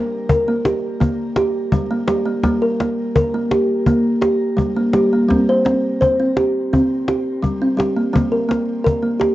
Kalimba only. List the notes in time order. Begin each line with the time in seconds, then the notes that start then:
Already playing: G3 A#3
0.29 A#4
0.48 A#3
0.66 G4
1.00 A#3
1.37 G4
1.72 G3
1.91 A#3
2.07 G3 G4
2.25 A#3
2.43 G3 A#3
2.62 A#4
2.80 A#3
3.15 A#4
3.34 A#3
3.51 G4
3.87 A#3
4.21 G4
4.57 G3
4.76 A#3
4.93 G3 G4
5.13 A#3
5.29 G3 C4
5.49 C5
5.65 C4
6.01 C5
6.20 C4
6.37 G4
6.73 C4
7.08 G4
7.42 G3
7.61 C4
7.77 G3 G4
7.96 A#3
8.13 G3 A#3
8.32 A#4
8.49 A#3
8.84 A#4
9.02 A#3
9.20 G4